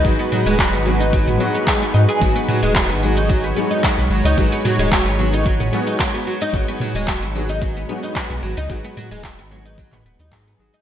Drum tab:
HH |o--oo--oo--oo--o|o--oo--oo--oo--o|o--oo--oo--oo--o|o--oo--oo--oo--o|
SH |xx-xxx-xxx-xxx-x|xx-xxx-xxx-xxx-x|xx-xxx-xxx-xxx-x|xx-xxx-xxx-xxx-x|
CP |----x-------x---|----x-------x---|----x-------x---|----x-------x---|
T2 |--o------o------|--o-------------|--o------o------|--o-------------|
BD |o---o---o---o---|o---o---o---o---|o---o---o---o---|o---o---o---o---|

HH |o--oo--oo--oo--o|
SH |xx-xxx-xxx-xxx-x|
CP |----x----x--x---|
T2 |--o------o------|
BD |o---o---o---o---|